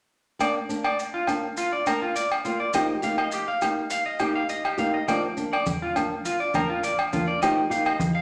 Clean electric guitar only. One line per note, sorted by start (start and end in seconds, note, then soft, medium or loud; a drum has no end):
0.41 0.53 D5 medium
0.85 0.97 D5 medium
1.14 1.26 F4 medium
1.58 1.70 F4 medium
1.73 1.85 D5 medium
1.87 2.00 A#4 medium
2.02 2.14 F4 medium
2.16 2.29 D5 medium
2.45 2.58 F4 medium
2.60 2.72 D5 medium
2.74 2.87 D#5 medium
3.04 3.16 F5 medium
3.19 3.31 D#5 medium
3.33 3.46 G4 medium
3.48 3.60 F5 medium
3.92 4.04 F5 medium
4.06 4.18 D#5 medium
4.21 4.33 G4 medium
4.35 4.48 F5 medium
4.50 4.62 D#5 medium
4.65 4.77 G4 medium
4.79 4.92 F5 medium
4.94 5.06 D#5 medium
5.08 5.21 D5 medium
5.53 5.65 D5 medium
5.82 5.94 F4 medium
6.25 6.38 F4 medium
6.40 6.52 D5 medium
6.55 6.67 A#4 medium
6.70 6.82 F4 medium
6.84 6.97 D5 medium
7.13 7.26 F4 medium
7.28 7.40 D5 medium
7.42 7.55 D#5 medium
7.71 7.84 F5 medium
7.86 7.98 D#5 medium
8.00 muted clean electric guitar stroke medium
8.15 8.22 F5 medium